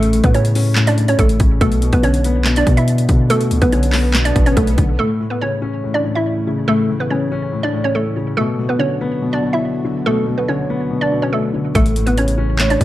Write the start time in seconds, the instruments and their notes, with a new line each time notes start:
Already playing: 808-style bass A1, grand piano A2 C#3 C#4, synth pluck A3 A4
0.03 closed hi-hat
0.13 grand piano A2, closed hi-hat
0.24 808-style bass A2, synth pluck B3 B4, kick, closed hi-hat
0.34 grand piano C#3, synth pluck C#4 C#5, closed hi-hat
0.45 closed hi-hat
0.55 grand piano C#4, open hi-hat
0.76 grand piano A2, snare, clap, closed hi-hat
0.87 synth pluck D4 D5, closed hi-hat
0.97 grand piano A2, closed hi-hat
1.08 synth pluck C#4 C#5, closed hi-hat
1.19 808-style bass A1, synth pluck A3 A4, kick, closed hi-hat
1.29 closed hi-hat
1.40 808-style bass A1, grand piano C#3, kick, closed hi-hat
1.61 808-style bass B1, grand piano B2, synth pluck A3 A4, kick, closed hi-hat
1.72 closed hi-hat
1.82 grand piano B2, closed hi-hat
1.93 808-style bass B1, synth pluck B3 B4, kick, closed hi-hat
2.03 grand piano D3, synth pluck C#4 C#5, closed hi-hat
2.14 closed hi-hat
2.24 grand piano B3, closed hi-hat
2.45 grand piano B2, snare, clap, closed hi-hat
2.56 synth pluck D4 D5, closed hi-hat
2.67 grand piano B2, 808-style bass B2, kick, closed hi-hat
2.77 synth pluck E4 E5, closed hi-hat
2.88 closed hi-hat
2.98 closed hi-hat
3.09 808-style bass B2, grand piano D3, kick, closed hi-hat
3.30 grand piano B2, synth pluck A3 A4, closed hi-hat, swell
3.41 closed hi-hat
3.51 808-style bass C#2, grand piano B2, closed hi-hat
3.62 808-style bass B1, synth pluck B3 B4, kick, closed hi-hat
3.72 grand piano D3, synth pluck C#4 C#5, closed hi-hat
3.83 closed hi-hat
3.93 grand piano B3, snare, clap, open hi-hat
4.14 grand piano B2, snare, clap, closed hi-hat
4.25 synth pluck D4 D5, closed hi-hat
4.36 808-style bass A1, grand piano B2, kick, closed hi-hat
4.46 synth pluck C#4 C#5, closed hi-hat
4.57 808-style bass B1, synth pluck A3 A4, kick, closed hi-hat
4.67 closed hi-hat
4.78 808-style bass B1, grand piano D3, kick, closed hi-hat
4.99 grand piano A2, analog synth pad C#3 E3 A3 E4, synth pluck A3 A4
5.20 grand piano A2
5.30 synth pluck B3 B4
5.41 grand piano C#3, synth pluck C#4 C#5
5.62 grand piano C#4
5.84 grand piano A2
5.94 synth pluck D4 D5
6.04 grand piano A2
6.15 synth pluck E4 E5
6.47 grand piano C#3
6.68 grand piano A2, synth pluck A3 A4
6.90 grand piano A2
7.00 synth pluck B3 B4
7.10 grand piano C#3, synth pluck C#4 C#5
7.32 grand piano C#4
7.52 grand piano A2
7.63 synth pluck D4 D5
7.73 grand piano A2
7.84 synth pluck C#4 C#5
7.95 synth pluck A3 A4
8.16 grand piano C#3
8.37 grand piano B2, analog synth pad D3 F#3 B3 F#4, synth pluck A3 A4
8.59 grand piano B2
8.69 synth pluck B3 B4
8.79 grand piano D3, synth pluck C#4 C#5
9.01 grand piano B3
9.22 grand piano B2
9.33 synth pluck D4 D5
9.43 grand piano B2
9.53 synth pluck E4 E5
9.85 grand piano D3
10.06 grand piano B2, synth pluck A3 A4
10.27 grand piano B2
10.38 synth pluck B3 B4
10.48 grand piano D3, synth pluck C#4 C#5
10.70 grand piano B3
10.91 grand piano B2
11.01 synth pluck D4 D5
11.12 grand piano B2
11.22 synth pluck C#4 C#5
11.33 synth pluck A3 A4
11.53 grand piano D3
11.75 808-style bass A1, grand piano A2, analog synth pad C#3 E3 A3 E4, synth pluck A3 A4, kick, closed hi-hat
11.86 closed hi-hat
11.96 grand piano A2, closed hi-hat
12.06 synth pluck B3 B4, closed hi-hat
12.18 grand piano C#3, synth pluck C#4 C#5, closed hi-hat
12.28 closed hi-hat
12.38 grand piano C#4
12.59 grand piano A2, soft synth lead C#5, snare, clap, closed hi-hat
12.70 synth pluck D4 D5, closed hi-hat
12.80 808-style bass A1, grand piano A2, soft synth lead D5, kick, closed hi-hat